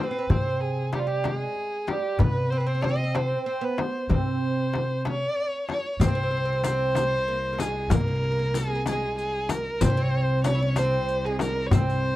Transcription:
0.00 0.10 C4 soft
0.00 0.31 B4 medium
0.11 0.17 C4 medium
0.19 0.25 C4 soft
0.30 1.43 C3 medium
0.30 0.89 C4 medium
0.30 0.62 C5 medium
0.30 darbuka dum medium
0.30 frame drum medium
0.46 darbuka ka soft
0.61 0.93 G#4 medium
0.61 darbuka ka soft
0.93 1.06 G3 medium
0.93 1.01 G4 medium
0.93 darbuka tek medium
0.93 frame drum medium
0.99 1.09 F4 medium
1.07 1.24 G3 medium
1.07 1.27 G4 medium
1.24 1.87 G#3 medium
1.24 1.89 G#4 medium
1.24 darbuka tek medium
1.24 frame drum medium
1.56 darbuka ka soft
1.87 2.19 G3 medium
1.87 2.20 G4 medium
1.87 darbuka tek medium
1.87 frame drum medium
2.19 3.33 C3 medium
2.19 2.52 B3 medium
2.19 2.52 B4 medium
2.19 darbuka dum medium
2.19 frame drum medium
2.35 darbuka ka soft
2.50 2.59 C4 medium
2.50 2.59 C5 medium
2.50 darbuka ka soft
2.57 2.65 C4 medium
2.57 2.68 B4 medium
2.66 2.73 C4 medium
2.66 2.85 C5 medium
2.75 2.80 C4 soft
2.81 2.88 C4 medium
2.81 3.18 D#5 medium
2.81 darbuka tek medium
2.81 frame drum medium
2.89 2.94 C4 medium
2.96 3.03 C4 medium
3.04 3.12 C4 medium
3.15 3.45 C4 medium
3.15 3.46 C5 medium
3.15 darbuka tek medium
3.15 frame drum medium
3.46 3.63 C4 medium
3.46 3.65 C5 medium
3.46 darbuka ka soft
3.61 4.09 B3 medium
3.61 3.81 B4 medium
3.78 4.11 C5 medium
3.78 darbuka tek medium
3.78 frame drum medium
4.09 5.24 C3 medium
4.09 5.65 C4 medium
4.09 5.02 C5 medium
4.09 darbuka dum medium
4.09 frame drum medium
4.41 darbuka ka soft
4.74 darbuka tek medium
4.74 frame drum medium
5.05 6.00 C#4 medium
5.05 5.66 C#5 loud
5.05 darbuka tek medium
5.05 frame drum medium
5.37 darbuka ka soft
5.69 5.94 C#5 medium
5.69 darbuka tek medium
5.69 frame drum medium
5.94 6.04 C#5 medium
6.00 9.79 C2 medium
6.00 7.14 C3 medium
6.00 6.07 C4 medium
6.00 6.65 C5 loud
6.00 riq medium
6.00 darbuka dum medium
6.00 frame drum medium
6.08 6.14 C4 medium
6.15 6.22 C4 medium
6.15 darbuka ka soft
6.23 6.30 C4 soft
6.31 6.36 C4 medium
6.31 darbuka ka soft
6.37 6.44 C4 medium
6.45 6.52 C4 medium
6.53 6.61 C4 soft
6.64 7.24 C4 medium
6.64 7.61 C5 loud
6.64 riq medium
6.64 darbuka tek medium
6.64 frame drum medium
6.95 riq soft
6.95 darbuka tek medium
6.95 frame drum medium
7.28 7.52 A#3 medium
7.53 7.59 A#3 soft
7.59 7.92 G#3 medium
7.59 7.94 G#4 medium
7.59 riq soft
7.59 darbuka tek medium
7.59 frame drum medium
7.90 9.04 C3 medium
7.90 7.99 A#3 medium
7.90 8.58 A#4 medium
7.90 riq medium
7.90 darbuka dum loud
7.90 frame drum medium
8.00 8.07 A#3 medium
8.06 8.14 A#3 medium
8.06 darbuka ka soft
8.15 8.22 A#3 soft
8.23 8.30 A#3 soft
8.23 darbuka ka soft
8.32 8.38 A#3 soft
8.39 8.45 A#3 soft
8.46 8.52 A#3 soft
8.54 8.58 A#3 soft
8.54 8.87 G#4 medium
8.54 riq medium
8.54 frame drum medium
8.60 8.66 A#3 soft
8.67 8.74 A#3 medium
8.75 8.82 A#3 soft
8.86 9.85 G#3 medium
8.86 9.17 G#4 medium
8.86 riq soft
8.86 darbuka tek medium
8.86 frame drum medium
9.18 9.51 G#4 medium
9.18 riq soft
9.49 9.82 A#4 medium
9.49 riq soft
9.49 darbuka tek medium
9.49 frame drum medium
9.80 12.16 C2 medium
9.80 10.95 C3 loud
9.80 9.89 C4 medium
9.80 10.44 C5 loud
9.80 riq medium
9.80 darbuka dum medium
9.80 frame drum medium
9.90 9.96 C#4 medium
9.97 10.42 C4 medium
9.97 darbuka ka soft
10.13 darbuka ka soft
10.44 10.53 C#4 medium
10.44 10.79 C#5 medium
10.44 riq medium
10.44 darbuka tek medium
10.44 frame drum medium
10.55 10.60 E4 medium
10.62 10.78 C#4 medium
10.76 11.27 C4 medium
10.76 11.27 C5 medium
10.76 riq soft
10.76 darbuka tek medium
10.76 frame drum medium
11.09 riq soft
11.25 11.74 G#3 medium
11.25 11.41 G#4 medium
11.39 11.68 A#4 medium
11.39 riq soft
11.39 darbuka tek medium
11.39 frame drum medium
11.67 11.74 C#5 medium
11.71 12.16 C3 medium
11.71 12.16 C4 medium
11.71 12.16 C5 loud
11.71 riq medium
11.71 darbuka dum loud
11.71 frame drum loud
11.87 riq soft
11.87 darbuka ka soft
12.03 darbuka ka soft

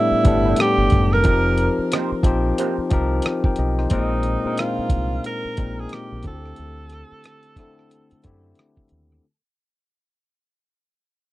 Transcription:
0.00 0.23 A2 medium
0.00 0.24 G3 medium
0.00 0.25 B3 medium
0.00 0.26 D4 medium
0.00 0.59 E4 medium
0.00 1.26 E4 medium
0.00 0.27 A4 medium
0.11 muted fingered electric bass stroke soft
0.23 0.52 G1 medium
0.23 1.09 A2 medium
0.23 1.09 G3 medium
0.23 1.10 B3 medium
0.23 1.10 D4 medium
0.23 1.11 A4 medium
0.23 kick medium
0.23 closed hi-hat medium
0.45 0.55 A3 soft
0.45 0.55 D4 medium
0.45 0.55 G4 medium
0.45 0.54 B4 medium
0.56 cross-stick loud
0.56 closed hi-hat medium
0.61 1.14 G4 medium
0.78 0.89 G1 medium
0.90 1.25 F#1 medium
0.90 kick medium
0.90 closed hi-hat soft
1.13 1.78 A#4 medium
1.13 cross-stick soft
1.23 1.68 F1 medium
1.23 2.09 F3 medium
1.23 2.09 C4 medium
1.23 2.10 D#4 medium
1.23 2.10 G4 medium
1.23 2.10 A#4 medium
1.23 kick medium
1.23 closed hi-hat medium
1.58 closed hi-hat medium
1.79 muted fingered electric bass stroke soft
1.92 2.10 A#3 medium
1.92 2.10 D#4 medium
1.92 2.10 G4 medium
1.92 2.10 C5 medium
1.92 cross-stick loud
1.92 closed hi-hat medium
2.12 muted fingered electric bass stroke soft
2.23 2.51 A#1 medium
2.23 2.80 F3 medium
2.23 2.81 C4 medium
2.23 2.81 D#4 medium
2.23 2.82 G4 medium
2.23 2.82 C5 medium
2.23 kick medium
2.23 closed hi-hat medium
2.58 2.76 A#3 medium
2.58 2.76 D#4 medium
2.58 2.76 G4 medium
2.58 2.76 C5 medium
2.58 closed hi-hat medium
2.78 muted fingered electric bass stroke soft
2.90 3.19 C2 medium
2.90 3.75 F3 medium
2.90 3.76 C4 medium
2.90 3.24 D#4 medium
2.90 3.25 G4 medium
2.90 3.25 A#4 medium
2.90 kick medium
2.90 closed hi-hat medium
3.22 cross-stick medium
3.22 closed hi-hat medium
3.44 3.58 A#4 soft
3.44 3.57 G5 medium
3.44 kick medium
3.56 3.86 B1 medium
3.56 3.77 G4 soft
3.56 3.77 D#5 medium
3.56 closed hi-hat soft
3.78 3.91 D#4 soft
3.78 4.09 C5 medium
3.78 cross-stick soft
3.90 4.35 A#1 medium
3.90 4.33 A#2 medium
3.90 4.33 G#3 medium
3.90 4.33 C4 medium
3.90 4.34 D#4 medium
3.90 4.60 D#4 medium
3.90 4.34 A#4 medium
3.90 kick medium
3.90 closed hi-hat medium
4.23 closed hi-hat soft
4.44 5.39 A#2 medium
4.44 5.39 G#3 medium
4.44 5.40 C4 soft
4.44 4.50 D4 soft
4.44 5.41 A#4 medium
4.44 muted fingered electric bass stroke soft
4.53 5.43 D#4 soft
4.57 5.25 F4 medium
4.57 cross-stick medium
4.57 closed hi-hat medium
4.78 muted fingered electric bass stroke soft
4.90 5.18 C2 medium
4.90 kick medium
4.90 closed hi-hat medium
5.24 5.82 A#4 loud
5.24 closed hi-hat medium
5.45 muted fingered electric bass stroke soft
5.57 5.85 A#1 medium
5.57 6.24 A#2 medium
5.57 6.24 G#3 medium
5.57 6.25 C4 medium
5.57 6.25 D#4 medium
5.57 6.25 A#4 medium
5.57 kick medium
5.57 closed hi-hat medium
5.80 5.95 G#4 medium
5.89 cross-stick medium
5.89 closed hi-hat medium
5.94 6.26 G4 medium
6.12 6.23 A#1 medium
6.23 6.52 D2 medium
6.23 7.36 D3 medium
6.23 7.36 A3 medium
6.23 7.36 C4 medium
6.23 kick medium
6.23 closed hi-hat soft
6.27 7.37 E4 medium
6.27 6.33 F#4 medium
6.27 8.55 A4 medium
6.34 7.40 G4 medium
6.46 cross-stick soft
6.56 7.02 D2 medium
6.56 closed hi-hat medium
6.89 cross-stick soft
6.89 closed hi-hat soft
7.12 muted fingered electric bass stroke soft
7.24 cross-stick medium
7.24 closed hi-hat medium
7.43 closed hi-hat soft
7.56 8.14 D3 medium
7.56 8.15 A3 medium
7.56 8.15 C4 medium
7.56 8.15 E4 medium
7.56 8.16 A4 medium
7.56 kick medium
7.56 cross-stick soft
7.56 closed hi-hat medium
7.79 cross-stick soft
7.91 closed hi-hat medium
8.11 muted fingered electric bass stroke soft
8.11 closed hi-hat soft
8.23 8.52 F#2 medium
8.23 9.09 D3 medium
8.23 9.09 A3 medium
8.23 9.10 C4 medium
8.23 9.10 E4 medium
8.23 9.10 G4 medium
8.23 kick medium
8.23 closed hi-hat medium
8.55 cross-stick medium
8.55 closed hi-hat medium
8.77 kick medium
8.89 9.19 D#2 medium
8.89 closed hi-hat soft
9.12 cross-stick soft

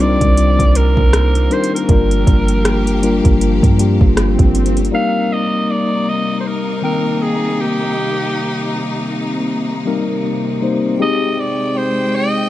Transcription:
0.00 0.17 C2 loud
0.00 1.86 D#3 medium
0.00 1.50 G3 medium
0.00 4.89 A#3 medium
0.00 1.51 C4 medium
0.00 1.86 C4 medium
0.00 1.51 D4 medium
0.00 1.51 D#4 medium
0.00 1.02 F4 medium
0.00 1.52 A#4 loud
0.00 0.78 D5 loud
0.00 swell medium
0.21 0.58 C2 loud
0.21 kick medium
0.21 closed hi-hat soft
0.37 closed hi-hat medium
0.59 0.96 C2 loud
0.59 kick medium
0.59 closed hi-hat soft
0.75 1.54 A#4 medium
0.75 closed hi-hat medium
0.97 1.49 C2 medium
0.97 kick medium
1.13 cross-stick loud
1.13 closed hi-hat medium
1.35 closed hi-hat soft
1.50 1.78 G3 medium
1.50 1.78 C4 medium
1.50 1.78 D4 medium
1.50 1.78 D#4 medium
1.50 1.79 A#4 medium
1.50 1.74 C5 medium
1.50 closed hi-hat soft
1.64 closed hi-hat soft
1.75 4.14 A#4 medium
1.75 closed hi-hat medium
1.88 2.26 G1 loud
1.88 4.90 F3 medium
1.88 2.64 G3 medium
1.88 2.64 A#3 medium
1.88 2.64 D4 medium
1.88 2.64 F4 medium
1.88 4.90 G4 medium
1.88 2.65 A#4 loud
1.88 kick loud
1.88 closed hi-hat medium
2.11 closed hi-hat medium
2.27 3.21 G1 loud
2.27 kick medium
2.27 closed hi-hat medium
2.48 closed hi-hat medium
2.65 cross-stick loud
2.65 closed hi-hat medium
2.87 closed hi-hat soft
3.02 3.54 G3 medium
3.02 3.55 A#3 medium
3.02 3.55 D4 medium
3.02 3.55 F4 medium
3.02 3.55 A#4 medium
3.02 closed hi-hat medium
3.25 3.61 G1 medium
3.25 kick medium
3.25 closed hi-hat soft
3.41 closed hi-hat medium
3.63 3.99 G2 medium
3.63 kick medium
3.63 closed hi-hat soft
3.78 4.54 G3 medium
3.78 4.54 A#3 medium
3.78 4.54 D4 medium
3.78 4.54 F4 medium
3.78 4.55 G4 medium
3.78 closed hi-hat medium
4.01 4.37 G1 loud
4.01 kick medium
4.17 cross-stick loud
4.17 closed hi-hat medium
4.39 4.91 G1 medium
4.39 kick medium
4.39 closed hi-hat soft
4.55 closed hi-hat medium
4.66 closed hi-hat medium
4.77 closed hi-hat soft
4.85 closed hi-hat soft
4.92 12.49 C3 medium
4.92 5.95 G3 loud
4.92 5.95 A#3 medium
4.92 10.96 A#3 medium
4.92 5.95 C4 medium
4.92 10.96 D#4 medium
4.92 5.95 D#4 loud
4.92 5.96 A#4 loud
4.92 5.34 F5 loud
5.33 5.72 D#5 loud
5.71 6.10 D5 loud
6.09 6.40 D#5 loud
6.41 6.48 C5 medium
6.47 6.84 A#4 medium
6.82 7.85 D#3 medium
6.82 7.85 A#3 medium
6.82 7.85 C4 medium
6.82 7.85 D#4 medium
6.82 7.24 A#4 medium
6.82 7.85 G5 medium
7.22 7.62 G#4 medium
7.60 9.11 G4 medium
9.85 10.38 G3 loud
9.85 10.38 A#3 medium
9.85 10.38 C4 medium
9.85 10.39 D#4 medium
9.85 10.39 A#4 loud
10.61 10.89 G3 medium
10.61 10.89 A#3 medium
10.61 10.90 C4 medium
10.61 10.90 D#4 medium
10.61 10.90 C5 medium
10.99 12.02 G#3 loud
10.99 12.49 G#3 medium
10.99 12.03 C4 loud
10.99 12.03 D#4 loud
10.99 12.02 G4 loud
10.99 12.03 G#4 loud
10.99 11.41 D#5 loud
10.99 12.49 G5 medium
11.40 11.79 D5 loud
11.78 12.17 C5 loud
12.16 12.49 D#5 loud

